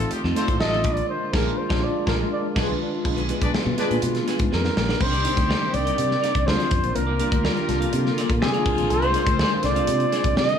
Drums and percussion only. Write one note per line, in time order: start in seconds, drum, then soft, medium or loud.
0.00 closed hi-hat medium
0.11 closed hi-hat medium
0.24 snare soft
0.36 snare soft
0.36 closed hi-hat medium
0.48 kick medium
0.48 closed hi-hat medium
0.61 snare loud
0.73 snare soft
0.84 kick loud
0.84 closed hi-hat medium
0.97 closed hi-hat medium
1.33 kick loud
1.33 snare loud
1.33 crash medium
1.70 kick loud
1.70 snare loud
2.07 kick medium
2.07 snare loud
2.56 kick loud
2.56 snare medium
2.56 crash medium
3.05 kick loud
3.05 crash medium
3.18 closed hi-hat soft
3.29 closed hi-hat medium
3.42 kick loud
3.42 closed hi-hat medium
3.54 snare loud
3.78 snare soft
3.78 closed hi-hat medium
3.91 closed hi-hat medium
4.02 closed hi-hat medium
4.15 snare soft
4.15 closed hi-hat soft
4.28 snare soft
4.28 closed hi-hat medium
4.39 kick loud
4.39 closed hi-hat medium
4.53 snare medium
4.65 snare medium
4.77 snare loud
4.89 snare medium
5.01 kick loud
5.01 crash loud
5.13 closed hi-hat soft
5.25 closed hi-hat medium
5.37 kick loud
5.37 closed hi-hat medium
5.51 snare loud
5.74 closed hi-hat medium
5.87 closed hi-hat medium
5.98 closed hi-hat medium
6.11 snare soft
6.24 snare soft
6.24 closed hi-hat medium
6.35 kick loud
6.35 closed hi-hat medium
6.48 snare loud
6.60 snare soft
6.60 closed hi-hat soft
6.71 kick loud
6.71 closed hi-hat medium
6.84 closed hi-hat medium
6.96 closed hi-hat medium
7.19 closed hi-hat loud
7.32 kick loud
7.32 closed hi-hat medium
7.45 snare loud
7.57 closed hi-hat soft
7.69 snare soft
7.69 closed hi-hat medium
7.82 closed hi-hat medium
7.93 closed hi-hat loud
8.06 snare soft
8.18 snare soft
8.18 closed hi-hat medium
8.30 kick loud
8.30 closed hi-hat medium
8.42 snare loud
8.54 closed hi-hat soft
8.66 kick loud
8.66 crash medium
8.78 closed hi-hat medium
8.90 closed hi-hat medium
9.02 closed hi-hat soft
9.14 closed hi-hat medium
9.27 kick loud
9.27 closed hi-hat medium
9.39 snare loud
9.63 snare soft
9.63 closed hi-hat medium
9.76 closed hi-hat medium
9.87 closed hi-hat loud
10.00 closed hi-hat soft
10.12 snare soft
10.12 closed hi-hat medium
10.24 kick loud
10.24 closed hi-hat medium
10.37 snare loud
10.49 closed hi-hat soft